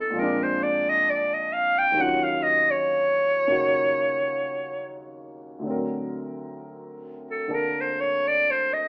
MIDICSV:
0, 0, Header, 1, 3, 480
1, 0, Start_track
1, 0, Tempo, 916031
1, 1032, Time_signature, 4, 2, 24, 8
1, 3436, Tempo, 931677
1, 4633, End_track
2, 0, Start_track
2, 0, Title_t, "Clarinet"
2, 0, Program_c, 0, 71
2, 3, Note_on_c, 0, 69, 56
2, 100, Note_on_c, 0, 70, 61
2, 108, Note_off_c, 0, 69, 0
2, 228, Note_on_c, 0, 72, 63
2, 236, Note_off_c, 0, 70, 0
2, 330, Note_on_c, 0, 74, 71
2, 338, Note_off_c, 0, 72, 0
2, 467, Note_on_c, 0, 75, 75
2, 475, Note_off_c, 0, 74, 0
2, 576, Note_on_c, 0, 74, 66
2, 584, Note_off_c, 0, 75, 0
2, 700, Note_on_c, 0, 75, 62
2, 708, Note_off_c, 0, 74, 0
2, 802, Note_on_c, 0, 77, 77
2, 809, Note_off_c, 0, 75, 0
2, 935, Note_on_c, 0, 79, 78
2, 943, Note_off_c, 0, 77, 0
2, 1054, Note_on_c, 0, 78, 67
2, 1062, Note_off_c, 0, 79, 0
2, 1172, Note_on_c, 0, 77, 62
2, 1180, Note_off_c, 0, 78, 0
2, 1273, Note_on_c, 0, 75, 73
2, 1281, Note_off_c, 0, 77, 0
2, 1419, Note_on_c, 0, 73, 72
2, 1426, Note_off_c, 0, 75, 0
2, 2629, Note_off_c, 0, 73, 0
2, 3823, Note_on_c, 0, 69, 56
2, 3944, Note_on_c, 0, 70, 62
2, 3952, Note_off_c, 0, 69, 0
2, 4082, Note_on_c, 0, 72, 59
2, 4090, Note_off_c, 0, 70, 0
2, 4181, Note_on_c, 0, 73, 70
2, 4189, Note_off_c, 0, 72, 0
2, 4322, Note_on_c, 0, 74, 68
2, 4330, Note_off_c, 0, 73, 0
2, 4440, Note_on_c, 0, 72, 63
2, 4447, Note_off_c, 0, 74, 0
2, 4557, Note_on_c, 0, 75, 67
2, 4565, Note_off_c, 0, 72, 0
2, 4633, Note_off_c, 0, 75, 0
2, 4633, End_track
3, 0, Start_track
3, 0, Title_t, "Grand piano"
3, 0, Program_c, 1, 0
3, 0, Control_c, 1, 64, 127
3, 0, Note_on_c, 1, 41, 36
3, 0, Note_on_c, 1, 53, 34
3, 0, Note_on_c, 1, 56, 34
3, 0, Note_on_c, 1, 59, 37
3, 0, Note_on_c, 1, 63, 42
3, 55, Note_on_c, 1, 46, 47
3, 62, Note_off_c, 1, 41, 0
3, 62, Note_off_c, 1, 53, 0
3, 70, Note_on_c, 1, 53, 44
3, 77, Note_off_c, 1, 56, 0
3, 83, Control_c, 1, 64, 0
3, 84, Note_off_c, 1, 59, 0
3, 86, Note_on_c, 1, 56, 44
3, 91, Note_off_c, 1, 63, 0
3, 97, Note_on_c, 1, 60, 39
3, 114, Note_on_c, 1, 62, 57
3, 177, Control_c, 1, 64, 127
3, 1004, Note_on_c, 1, 39, 44
3, 1015, Note_on_c, 1, 51, 43
3, 1021, Note_off_c, 1, 46, 0
3, 1029, Note_off_c, 1, 53, 0
3, 1034, Note_on_c, 1, 54, 41
3, 1037, Note_off_c, 1, 56, 0
3, 1040, Control_c, 1, 64, 0
3, 1042, Note_off_c, 1, 60, 0
3, 1047, Note_on_c, 1, 61, 39
3, 1051, Note_off_c, 1, 62, 0
3, 1061, Note_on_c, 1, 65, 48
3, 1115, Control_c, 1, 64, 127
3, 1821, Note_on_c, 1, 49, 36
3, 1823, Note_on_c, 1, 58, 32
3, 1833, Note_on_c, 1, 63, 30
3, 1840, Note_on_c, 1, 66, 43
3, 2931, Note_on_c, 1, 38, 41
3, 2941, Note_off_c, 1, 39, 0
3, 2944, Note_on_c, 1, 50, 42
3, 2947, Note_off_c, 1, 51, 0
3, 2949, Note_off_c, 1, 49, 0
3, 2951, Note_off_c, 1, 58, 0
3, 2953, Note_off_c, 1, 54, 0
3, 2956, Note_off_c, 1, 63, 0
3, 2959, Note_off_c, 1, 66, 0
3, 2961, Note_on_c, 1, 54, 38
3, 2962, Control_c, 1, 64, 0
3, 2963, Note_off_c, 1, 61, 0
3, 2969, Note_off_c, 1, 65, 0
3, 2971, Note_on_c, 1, 60, 37
3, 2989, Note_on_c, 1, 70, 44
3, 3054, Control_c, 1, 64, 127
3, 3902, Note_off_c, 1, 50, 0
3, 3910, Note_on_c, 1, 50, 35
3, 3917, Note_on_c, 1, 58, 33
3, 3926, Note_on_c, 1, 69, 43
3, 4633, Note_off_c, 1, 38, 0
3, 4633, Note_off_c, 1, 50, 0
3, 4633, Note_off_c, 1, 54, 0
3, 4633, Note_off_c, 1, 58, 0
3, 4633, Note_off_c, 1, 60, 0
3, 4633, Note_off_c, 1, 69, 0
3, 4633, Note_off_c, 1, 70, 0
3, 4633, End_track
0, 0, End_of_file